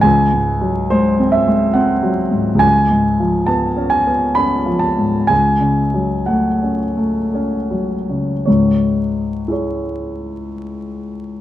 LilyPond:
<<
  \new Staff \with { instrumentName = "Grand piano" } { \time 3/4 \key cis \minor \tempo 4 = 65 << { gis''4 bis'8 e''8 fis''4 | gis''4 a''8 gis''8 b''8 a''8 | gis''4 fis''8 r4. | cis''2. | } \\ { r2. | r2. | r2. | r4 <e' gis' cis''>2 | } >> }
  \new Staff \with { instrumentName = "Grand piano" } { \clef bass \time 3/4 \key cis \minor \tuplet 3/2 { cis,8 gis,8 fis8 gis8 bis8 gis8 bis8 fis8 gis,8 } | \tuplet 3/2 { cis,8 gis,8 eis8 b8 cis'8 b8 cis'8 eis8 gis,8 } | \tuplet 3/2 { cis,8 cis8 fis8 a8 cis'8 a8 cis'8 fis8 cis8 } | <cis, gis,>2. | }
>>